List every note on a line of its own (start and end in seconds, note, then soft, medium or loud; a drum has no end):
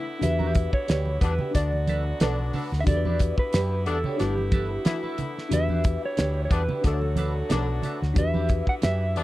0.00 0.20 D3 medium
0.00 0.21 A3 medium
0.00 1.50 B3 medium
0.00 0.18 D4 medium
0.00 0.19 E4 medium
0.00 1.50 E4 medium
0.00 0.20 A4 medium
0.00 0.24 B4 medium
0.06 muted clean electric guitar stroke soft
0.19 1.53 D3 medium
0.19 1.53 E3 medium
0.19 1.50 D4 medium
0.19 1.52 F#4 medium
0.19 muted clean electric guitar stroke soft
0.19 closed hi-hat medium
0.19 muted conga soft
0.19 low conga medium
0.23 0.67 E2 loud
0.23 1.52 G4 medium
0.23 1.53 B4 medium
0.23 0.73 E5 loud
0.39 0.53 D4 medium
0.39 0.54 G4 medium
0.39 0.54 B4 medium
0.39 muted conga soft
0.39 high conga medium
0.54 muted clean electric guitar stroke soft
0.54 kick medium
0.54 closed hi-hat medium
0.73 1.18 C#5 loud
0.73 muted clean electric guitar stroke soft
0.73 kick medium
0.88 1.17 D2 medium
0.88 1.09 D4 medium
0.88 1.09 G4 medium
0.88 1.10 B4 medium
0.88 snare loud
0.88 closed hi-hat loud
0.88 muted conga soft
1.06 muted conga soft
1.21 1.37 E2 medium
1.21 1.33 D3 medium
1.21 1.33 G3 medium
1.21 1.33 B3 medium
1.21 1.33 D4 medium
1.21 1.52 B4 medium
1.21 muted clean electric guitar stroke soft
1.21 kick medium
1.21 closed hi-hat medium
1.39 1.54 D4 soft
1.39 1.54 G4 medium
1.39 1.53 B4 medium
1.39 low conga medium
1.51 2.85 D3 medium
1.51 1.70 D3 medium
1.51 2.85 F#3 medium
1.51 2.85 A3 medium
1.51 1.70 A3 medium
1.51 8.12 B3 medium
1.51 1.70 B3 medium
1.51 2.82 D4 medium
1.51 1.70 D4 medium
1.51 2.83 F#4 medium
1.51 2.85 F#4 medium
1.51 kick medium
1.51 closed hi-hat medium
1.51 muted conga soft
1.55 2.12 D2 loud
1.55 2.85 A4 medium
1.55 2.50 D5 medium
1.55 2.85 D5 medium
1.55 snare soft
1.72 muted clean electric guitar stroke soft
1.72 muted conga soft
1.87 2.09 D4 medium
1.87 2.06 A4 medium
1.87 2.04 B4 medium
1.87 closed hi-hat medium
1.87 high conga medium
2.06 muted clean electric guitar stroke soft
2.20 2.50 B1 medium
2.20 2.69 D3 medium
2.20 2.69 A3 loud
2.20 2.69 B3 medium
2.20 2.41 D4 medium
2.20 2.69 D4 loud
2.20 2.40 A4 medium
2.20 2.38 B4 medium
2.20 snare loud
2.20 closed hi-hat medium
2.20 muted conga soft
2.20 high conga medium
2.39 muted clean electric guitar stroke soft
2.39 muted conga soft
2.53 2.71 D4 medium
2.53 2.71 A4 medium
2.53 2.71 B4 medium
2.53 open hi-hat medium
2.53 low conga medium
2.72 2.85 D2 medium
2.72 muted clean electric guitar stroke soft
2.72 snare soft
2.81 4.15 D4 medium
2.81 2.87 E5 medium
2.86 3.31 E2 loud
2.86 9.23 D3 medium
2.86 4.18 E3 medium
2.86 6.80 E4 medium
2.86 4.16 F#4 medium
2.86 4.17 G4 medium
2.86 2.95 A4 medium
2.86 3.35 D5 loud
2.86 muted clean electric guitar stroke soft
2.86 kick loud
2.86 closed hi-hat medium
2.86 low conga medium
2.97 4.20 B4 medium
3.05 3.19 D4 medium
3.05 3.20 G4 medium
3.05 3.20 B4 medium
3.05 high conga medium
3.19 muted clean electric guitar stroke soft
3.19 kick medium
3.19 closed hi-hat medium
3.38 3.84 B4 loud
3.38 muted clean electric guitar stroke soft
3.38 kick medium
3.53 3.87 F#2 medium
3.53 3.74 D4 medium
3.53 3.75 G4 medium
3.53 3.75 B4 medium
3.53 snare loud
3.53 closed hi-hat medium
3.86 4.02 E2 medium
3.86 3.97 D3 medium
3.86 3.97 G3 medium
3.86 3.97 B3 medium
3.86 3.97 D4 loud
3.86 4.17 A4 medium
3.86 muted clean electric guitar stroke soft
3.86 closed hi-hat medium
4.04 4.19 D4 medium
4.04 4.19 G4 medium
4.04 4.19 C#5 medium
4.04 low conga medium
4.16 4.34 D3 medium
4.16 4.34 A3 medium
4.16 5.50 A3 medium
4.16 4.34 B3 medium
4.16 5.47 D4 medium
4.16 4.34 D4 medium
4.16 5.48 E4 medium
4.16 4.84 G4 medium
4.16 5.49 A4 medium
4.16 closed hi-hat medium
4.16 muted conga soft
4.21 4.77 G1 loud
4.21 5.50 B4 medium
4.21 snare soft
4.38 muted clean electric guitar stroke soft
4.38 muted conga soft
4.52 4.73 E4 medium
4.52 4.71 A4 medium
4.52 4.70 B4 medium
4.52 kick medium
4.52 closed hi-hat medium
4.52 high conga medium
4.71 muted clean electric guitar stroke soft
4.84 5.34 E3 medium
4.84 5.34 A3 medium
4.84 5.34 B3 medium
4.84 5.34 E4 loud
4.84 5.15 F#4 medium
4.84 muted clean electric guitar stroke soft
4.84 snare loud
4.84 closed hi-hat medium
4.84 muted conga soft
4.84 high conga medium
5.03 5.18 E4 medium
5.03 5.18 A4 medium
5.03 5.19 B4 medium
5.03 muted conga soft
5.18 muted clean electric guitar stroke soft
5.18 closed hi-hat medium
5.18 low conga medium
5.36 muted clean electric guitar stroke medium
5.36 snare soft
5.49 5.96 E2 loud
5.49 6.83 E3 medium
5.49 6.83 G3 medium
5.49 6.80 D4 medium
5.49 6.81 F#4 medium
5.49 6.82 G4 medium
5.49 muted clean electric guitar stroke soft
5.49 closed hi-hat medium
5.49 muted conga soft
5.49 low conga medium
5.54 6.83 B4 medium
5.54 6.05 E5 loud
5.69 5.84 D4 medium
5.69 5.84 G4 medium
5.69 5.84 B4 medium
5.69 muted conga soft
5.69 high conga medium
5.84 muted clean electric guitar stroke soft
5.84 kick loud
5.84 closed hi-hat medium
6.02 6.44 C#5 loud
6.02 muted clean electric guitar stroke soft
6.17 6.47 D2 medium
6.17 6.38 D4 medium
6.17 6.38 G4 medium
6.17 6.39 B4 medium
6.17 snare loud
6.17 closed hi-hat medium
6.17 muted conga soft
6.45 6.51 C#5 medium
6.50 6.66 E2 medium
6.50 6.62 D3 medium
6.50 6.62 G3 medium
6.50 6.62 B3 medium
6.50 6.62 D4 medium
6.50 6.86 B4 medium
6.50 muted clean electric guitar stroke soft
6.50 kick medium
6.50 closed hi-hat medium
6.68 6.84 D4 medium
6.68 6.83 G4 medium
6.68 6.83 B4 medium
6.68 low conga medium
6.81 7.41 D2 loud
6.81 6.99 D3 medium
6.81 8.15 F#3 medium
6.81 6.99 A3 medium
6.81 8.15 A3 medium
6.81 6.99 B3 medium
6.81 8.12 D4 medium
6.81 6.99 D4 medium
6.81 8.13 F#4 medium
6.81 8.15 F#4 medium
6.81 8.14 A4 medium
6.81 kick medium
6.81 snare soft
6.81 closed hi-hat medium
6.86 7.81 A4 medium
6.86 6.92 C5 medium
6.93 8.18 C#5 medium
7.02 muted clean electric guitar stroke soft
7.02 muted conga soft
7.16 7.38 D4 medium
7.16 7.35 A4 medium
7.16 7.33 B4 medium
7.16 closed hi-hat medium
7.16 high conga medium
7.35 muted clean electric guitar stroke soft
7.49 7.79 B1 loud
7.49 7.98 D3 medium
7.49 7.98 A3 medium
7.49 7.98 B3 medium
7.49 7.71 D4 medium
7.49 7.98 D4 loud
7.49 7.68 A4 medium
7.49 7.67 B4 medium
7.49 snare loud
7.49 closed hi-hat medium
7.49 muted conga soft
7.49 high conga medium
7.67 muted clean electric guitar stroke soft
7.67 muted conga soft
7.82 8.00 D4 medium
7.82 8.00 A4 medium
7.82 8.00 B4 medium
7.82 closed hi-hat medium
7.82 low conga medium
8.01 8.15 D2 medium
8.01 muted clean electric guitar stroke soft
8.01 snare soft
8.14 8.60 E2 loud
8.14 9.23 E3 medium
8.14 9.23 B3 medium
8.14 9.23 D4 medium
8.14 9.23 E4 medium
8.14 9.23 F#4 medium
8.14 muted clean electric guitar stroke soft
8.14 kick loud
8.14 closed hi-hat medium
8.14 low conga medium
8.18 9.23 G4 medium
8.18 9.23 B4 medium
8.18 8.69 E5 loud
8.34 8.49 D4 medium
8.34 8.49 G4 medium
8.34 8.50 B4 medium
8.34 muted conga soft
8.34 high conga medium
8.49 kick medium
8.49 closed hi-hat medium
8.67 8.74 F#5 loud
8.67 muted clean electric guitar stroke soft
8.67 kick medium
8.82 9.17 F#2 loud
8.82 9.03 D4 medium
8.82 9.04 G4 medium
8.82 9.04 B4 medium
8.82 9.23 E5 loud
8.82 snare loud
8.82 closed hi-hat medium
8.82 muted conga soft
9.15 9.23 E2 loud
9.15 9.23 D3 medium
9.15 9.23 G3 medium
9.15 9.23 B3 medium
9.15 9.23 D4 loud
9.15 muted clean electric guitar stroke soft
9.15 closed hi-hat medium